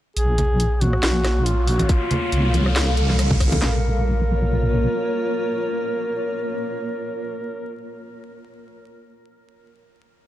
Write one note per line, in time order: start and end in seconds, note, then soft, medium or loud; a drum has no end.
0.16 1.01 A#1 medium
0.16 1.88 A#3 medium
0.16 0.75 G#4 loud
0.16 1.88 C#5 medium
0.16 3.58 F5 medium
0.16 closed hi-hat medium
0.16 riser medium
0.38 closed hi-hat medium
0.38 low conga medium
0.60 closed hi-hat medium
0.75 0.83 G#4 medium
0.81 1.48 F#4 loud
0.81 closed hi-hat medium
0.81 high conga medium
0.93 cross-stick soft
1.03 1.88 A#1 medium
1.03 snare loud
1.03 closed hi-hat medium
1.24 cross-stick medium
1.24 snare soft
1.24 closed hi-hat medium
1.46 1.69 F4 medium
1.46 closed hi-hat medium
1.68 1.91 F#4 medium
1.68 open hi-hat medium
1.79 closed hi-hat medium
1.79 high conga loud
1.89 3.60 G3 medium
1.89 2.76 F4 medium
1.89 3.60 A4 medium
1.89 kick loud
1.89 closed hi-hat medium
2.11 closed hi-hat medium
2.11 low conga medium
2.32 3.60 C2 loud
2.32 closed hi-hat medium
2.54 closed hi-hat medium
2.54 high conga medium
2.66 cross-stick soft
2.76 snare loud
2.76 closed hi-hat medium
2.97 closed hi-hat medium
3.09 snare soft
3.09 high conga medium
3.19 cross-stick medium
3.19 closed hi-hat medium
3.31 kick loud
3.31 low conga medium
3.40 kick medium
3.40 cross-stick medium
3.40 open hi-hat loud
3.52 closed hi-hat medium
3.52 high conga loud
3.52 low conga medium
3.62 4.87 A#1 loud
3.62 7.84 A#3 medium
3.62 7.84 F4 medium
3.62 7.83 A#4 loud
3.62 7.83 C#5 loud
3.62 snare loud
3.62 clap medium